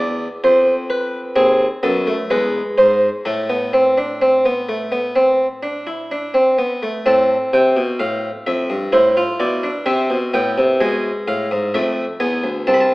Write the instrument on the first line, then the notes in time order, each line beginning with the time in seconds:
harpsichord
Already playing: E2 B3 D5
0.44 F2 C5
0.90 B4
1.36 D#2 C4 G#4
1.83 F#2 B3 A4
2.07 A3
2.30 E2 G#3 B4
2.78 G#2 C5
3.25 A2 A3 A4
3.50 B3
3.73 C4
3.98 D4
4.22 C4
4.45 B3
4.69 A3
4.92 B3
5.16 C4
5.63 D4
5.87 E4
6.11 D4
6.34 C4
6.58 B3
6.83 A3
7.06 A2 C4 A5
7.53 C3 G5
7.77 B2
7.99 A2 F5
8.47 F2 E5
8.70 G2
8.92 A2 E4 C5
9.17 F4
9.40 B2 E4 D5
9.63 D4
9.86 C3 C4 E5
10.10 B2
10.34 A2 B3 G5
10.58 C3
10.81 B2 G#3 G#5
11.28 A2 F5
11.51 G#2
11.74 F2 A3 E5
12.20 E2 B3 G#5
12.44 D2
12.67 C2 C4 A5
12.74 B5
12.80 A5